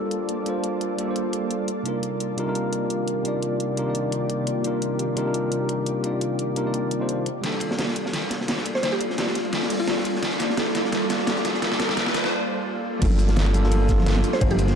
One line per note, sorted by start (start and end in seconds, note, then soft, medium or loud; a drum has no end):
0.00 0.44 G3 medium
0.00 1.64 G3 medium
0.00 0.45 A#3 medium
0.00 7.22 A#3 medium
0.00 0.47 D4 medium
0.00 0.48 F4 medium
0.00 7.22 F4 medium
0.00 1.00 A4 loud
0.00 1.64 A4 medium
0.00 0.49 C5 medium
0.00 7.22 D5 medium
0.11 closed hi-hat medium
0.29 closed hi-hat medium
0.44 0.95 G3 medium
0.44 0.96 A#3 medium
0.44 0.97 D4 medium
0.44 0.97 F4 medium
0.44 closed hi-hat medium
0.49 0.98 C5 medium
0.64 closed hi-hat medium
0.81 closed hi-hat medium
0.98 1.04 G3 medium
0.98 1.05 A#3 medium
0.98 1.06 D4 medium
0.98 1.06 F4 medium
0.98 1.06 A4 medium
0.98 closed hi-hat medium
1.06 1.66 G3 medium
1.06 1.67 A#3 medium
1.06 1.67 D4 medium
1.06 1.68 F4 medium
1.11 1.69 C5 medium
1.16 closed hi-hat medium
1.33 closed hi-hat medium
1.51 closed hi-hat medium
1.68 7.22 C3 medium
1.68 7.22 D#3 medium
1.68 7.22 G4 medium
1.68 closed hi-hat medium
1.83 2.35 C3 medium
1.83 2.35 G3 medium
1.83 2.36 D4 medium
1.83 2.36 D#4 medium
1.83 closed hi-hat medium
1.87 2.37 F4 medium
1.87 2.37 A#4 medium
2.03 closed hi-hat medium
2.20 closed hi-hat medium
2.37 2.45 C3 medium
2.37 2.45 G3 medium
2.37 2.45 D4 medium
2.37 2.45 D#4 medium
2.37 2.46 F4 medium
2.37 2.46 A#4 loud
2.37 closed hi-hat medium
2.46 2.56 C3 medium
2.46 2.57 G3 medium
2.46 2.57 D4 medium
2.46 2.57 D#4 medium
2.46 2.57 F4 medium
2.46 2.58 A#4 loud
2.55 closed hi-hat medium
2.73 closed hi-hat medium
2.90 closed hi-hat medium
3.08 closed hi-hat medium
3.23 3.74 C3 medium
3.23 3.75 G3 medium
3.23 3.75 D4 medium
3.23 3.76 D#4 medium
3.23 closed hi-hat medium
3.27 3.76 F4 medium
3.27 3.77 D5 medium
3.43 closed hi-hat medium
3.60 closed hi-hat medium
3.76 3.83 C3 medium
3.76 3.84 G3 medium
3.76 3.85 D4 medium
3.76 3.85 D#4 medium
3.76 3.85 F4 medium
3.76 3.85 A#4 medium
3.76 closed hi-hat medium
3.85 4.61 C3 medium
3.85 4.62 G3 medium
3.85 4.63 D4 medium
3.85 4.63 D#4 medium
3.89 4.64 F4 medium
3.89 4.64 D5 medium
3.95 closed hi-hat medium
4.12 closed hi-hat medium
4.30 closed hi-hat medium
4.47 closed hi-hat medium
4.62 5.14 C3 medium
4.62 5.14 G3 medium
4.62 5.15 D4 medium
4.62 5.15 D#4 medium
4.62 closed hi-hat medium
4.66 5.16 F4 medium
4.66 5.16 A#4 medium
4.82 closed hi-hat medium
4.99 closed hi-hat medium
5.15 5.23 C3 medium
5.15 5.24 G3 medium
5.15 5.24 D4 medium
5.15 5.24 D#4 medium
5.15 5.24 F4 medium
5.15 5.25 A#4 loud
5.15 closed hi-hat medium
5.25 5.35 C3 medium
5.25 5.35 G3 medium
5.25 5.36 D4 medium
5.25 5.36 D#4 medium
5.25 5.36 F4 medium
5.25 5.37 A#4 loud
5.34 closed hi-hat medium
5.52 closed hi-hat medium
5.69 closed hi-hat medium
5.86 closed hi-hat medium
6.01 6.53 C3 medium
6.01 6.54 G3 medium
6.01 6.54 D4 medium
6.01 6.55 D#4 medium
6.01 closed hi-hat medium
6.06 6.55 F4 medium
6.06 6.56 D5 medium
6.21 closed hi-hat medium
6.39 closed hi-hat medium
6.55 6.63 C3 medium
6.55 6.63 G3 medium
6.55 6.63 D4 medium
6.55 6.64 D#4 medium
6.55 6.64 F4 medium
6.55 6.64 A#4 medium
6.55 closed hi-hat loud
6.64 6.98 C3 medium
6.64 6.98 G3 medium
6.64 6.99 D4 medium
6.64 6.99 D#4 medium
6.64 6.99 F4 medium
6.64 6.99 D5 medium
6.74 closed hi-hat medium
6.91 closed hi-hat loud
6.99 7.25 C3 medium
6.99 7.25 G3 medium
6.99 7.25 D4 medium
6.99 7.25 D#4 medium
6.99 7.26 F4 medium
6.99 7.26 C5 loud
7.09 closed hi-hat medium
7.26 closed hi-hat medium
7.41 12.31 G3 medium
7.41 12.81 G3 medium
7.41 12.31 A#3 medium
7.41 12.98 A#3 medium
7.41 12.32 D4 medium
7.41 12.80 F4 medium
7.41 12.33 F4 medium
7.41 12.98 A4 medium
7.41 12.98 D5 medium
7.41 snare soft
7.41 closed hi-hat medium
7.41 ride medium
7.41 riser medium
7.46 12.33 A4 loud
7.60 closed hi-hat medium
7.60 ride medium
7.71 snare medium
7.79 snare soft
7.79 snare loud
7.79 closed hi-hat medium
7.79 ride medium
7.89 snare soft
7.96 closed hi-hat medium
7.96 ride medium
8.06 snare medium
8.13 snare medium
8.13 closed hi-hat medium
8.13 ride medium
8.30 snare medium
8.30 closed hi-hat loud
8.30 ride medium
8.41 snare soft
8.48 snare medium
8.48 snare loud
8.48 closed hi-hat medium
8.48 ride medium
8.58 snare medium
8.66 closed hi-hat medium
8.66 ride medium
8.75 8.80 C5 medium
8.75 snare soft
8.83 8.89 C5 medium
8.83 snare medium
8.83 closed hi-hat medium
8.83 ride medium
8.92 9.13 G4 medium
9.01 closed hi-hat medium
9.01 ride medium
9.10 snare soft
9.18 snare medium
9.18 snare loud
9.18 closed hi-hat medium
9.18 ride medium
9.27 snare medium
9.35 snare soft
9.35 closed hi-hat medium
9.35 ride medium
9.45 ride soft
9.53 snare medium
9.53 closed hi-hat medium
9.53 ride medium
9.63 snare medium
9.70 closed hi-hat medium
9.70 open hi-hat medium
9.80 10.28 F4 medium
9.88 snare medium
9.88 snare loud
9.88 closed hi-hat medium
9.88 ride medium
9.98 snare medium
10.05 closed hi-hat medium
10.05 ride medium
10.15 snare soft
10.22 snare medium
10.22 closed hi-hat medium
10.22 ride medium
10.32 shaker soft
10.39 snare medium
10.39 closed hi-hat medium
10.39 ride medium
10.39 shaker medium
10.50 snare medium
10.57 snare medium
10.57 snare loud
10.57 closed hi-hat medium
10.57 ride medium
10.67 snare soft
10.75 snare medium
10.75 closed hi-hat medium
10.75 ride medium
10.75 shaker medium
10.85 snare soft
10.92 snare medium
10.92 closed hi-hat medium
10.92 ride medium
11.10 snare medium
11.10 closed hi-hat medium
11.10 ride medium
11.10 shaker medium
11.19 snare soft
11.27 snare loud
11.27 snare medium
11.27 closed hi-hat medium
11.27 ride medium
11.36 snare soft
11.36 shaker soft
11.45 snare medium
11.45 closed hi-hat medium
11.45 ride medium
11.45 shaker medium
11.54 snare soft
11.62 snare medium
11.62 closed hi-hat medium
11.62 ride medium
11.72 snare medium
11.72 shaker soft
11.80 snare medium
11.80 snare loud
11.80 closed hi-hat medium
11.80 ride medium
11.80 shaker medium
11.89 snare medium
11.89 snare soft
11.97 snare loud
11.97 closed hi-hat medium
11.97 ride medium
12.06 snare medium
12.06 snare soft
12.14 snare loud
12.14 closed hi-hat medium
12.14 ride medium
12.14 shaker medium
12.24 snare medium
12.99 14.23 G1 loud
12.99 13.51 G3 medium
12.99 13.52 A#3 medium
12.99 14.75 A#3 medium
12.99 13.52 D4 medium
12.99 14.75 F4 medium
12.99 13.53 F4 medium
12.99 14.75 A4 loud
12.99 kick loud
12.99 closed hi-hat loud
12.99 ride loud
12.99 crash loud
13.05 13.54 A4 medium
13.11 closed hi-hat soft
13.11 muted conga medium
13.11 high conga loud
13.11 shaker soft
13.19 closed hi-hat medium
13.19 ride medium
13.19 shaker medium
13.28 snare medium
13.28 closed hi-hat soft
13.28 muted conga medium
13.36 snare loud
13.36 closed hi-hat loud
13.36 ride medium
13.46 snare soft
13.46 closed hi-hat soft
13.53 13.61 G3 loud
13.53 13.61 A#3 medium
13.53 13.61 D4 medium
13.53 13.62 F4 medium
13.53 13.62 A4 loud
13.53 closed hi-hat medium
13.53 ride medium
13.53 muted conga medium
13.53 high conga medium
13.53 shaker medium
13.62 13.72 G3 medium
13.62 13.73 A#3 medium
13.62 13.73 D4 medium
13.62 13.73 F4 medium
13.62 13.74 A4 loud
13.62 snare soft
13.72 closed hi-hat loud
13.72 ride medium
13.72 muted conga medium
13.89 kick loud
13.89 snare medium
13.89 closed hi-hat medium
13.89 ride medium
13.89 shaker medium
13.98 snare soft
13.98 muted conga medium
13.98 high conga loud
14.06 snare loud
14.06 closed hi-hat loud
14.06 ride medium
14.16 snare medium
14.16 muted conga medium
14.16 shaker soft
14.24 closed hi-hat medium
14.24 ride medium
14.24 shaker medium
14.33 14.38 C5 medium
14.33 snare soft
14.39 14.75 G1 loud
14.39 14.75 G3 medium
14.39 14.75 A#3 medium
14.39 14.75 D4 medium
14.39 14.75 F4 medium
14.39 14.48 C5 medium
14.39 kick loud
14.39 closed hi-hat loud
14.39 ride medium
14.39 muted conga medium
14.44 14.75 C5 medium
14.51 14.72 G4 medium
14.51 closed hi-hat soft
14.51 high conga loud
14.51 shaker soft
14.59 closed hi-hat medium
14.59 ride medium
14.59 muted conga medium
14.59 shaker medium
14.68 snare soft
14.68 closed hi-hat soft